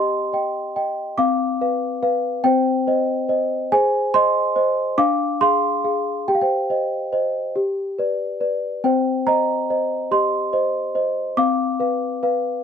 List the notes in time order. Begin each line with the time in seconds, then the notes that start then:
Already playing: C4 G4 C5 D#5 G5 A#5 C6
0.33 D#5 G5
0.76 D#5 G5
1.18 C4 F5 D6
1.61 B4 F5
2.02 B4 F5
2.44 C4 C5 G5
2.87 C5 D#5
3.29 C5 D#5
3.72 G#4 C5 G#5
4.14 C5 D#5 C6
4.56 C5 D#5
4.98 D4 F5 D6
5.41 G#4 F5 C6
5.84 G#4 F5
6.28 G4 G5
6.35 F5
6.41 C5 G5
6.70 C5 D#5
7.13 C5 D#5
7.56 G4
7.99 B4 D5
8.40 B4 D5
8.84 C4 C5 G5
9.27 C5 D#5 A#5
9.70 C5 D#5
10.11 G4 D#5 C6
10.53 C5 D#5
10.95 C5 D#5
11.37 C4 F5 D6
11.80 B4 F5
12.23 B4 F5